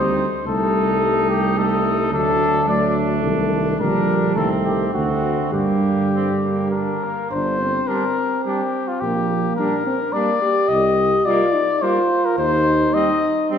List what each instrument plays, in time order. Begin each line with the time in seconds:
Already playing: tuba D2, trombone G3, french horn C4, trumpet D#4, cornet C5
0.46 tuba C2, trombone G3, french horn A3, trumpet D#4, cornet A4
1.30 cornet G4
1.57 trombone G3, french horn A3, trumpet D#4, cornet A4
2.12 tuba D2, trombone F#3, french horn A3, trumpet D4, cornet A4
2.68 trombone F#3, french horn A3, trumpet D4, cornet D5
3.24 tuba C2, trombone D#3
3.79 tuba A#1, trombone D3, french horn G3, trumpet D4, cornet A#4
4.36 tuba C2, trombone D#3, french horn A3, trumpet C4, cornet A4
4.65 cornet G4
4.93 tuba D2, trombone D3, french horn A3, trumpet C4, cornet F#4
5.53 tuba G2, trombone D3, french horn G3, trumpet A#3, cornet G4
6.15 trumpet C4
6.43 trumpet A#3
6.71 trumpet D4, cornet A#4
7.04 trumpet A#3
7.31 tuba G1, french horn D4, cornet C5
7.61 french horn C4
7.87 trombone G3, trumpet D4, cornet A#4
8.45 trombone G3, trumpet D4, cornet G4
8.88 cornet F4
9.01 tuba A#1, french horn A#3, cornet G4
9.56 trombone G3, trumpet D4, french horn D4, cornet A#4
9.87 french horn C4
10.13 trombone G3, french horn A#3, trumpet D4, cornet D5
10.42 french horn G4
10.68 tuba C2, cornet D#5
11.25 trombone G3, trumpet A#3, french horn F4, cornet D5
11.54 french horn D#4
11.82 trombone G3, trumpet A#3, french horn F4, cornet C5
12.25 cornet A#4
12.38 tuba D#2, french horn D#4, cornet C5
12.94 trombone G3, trumpet C4, cornet D#5
13.50 trombone G3, trumpet C4, french horn D4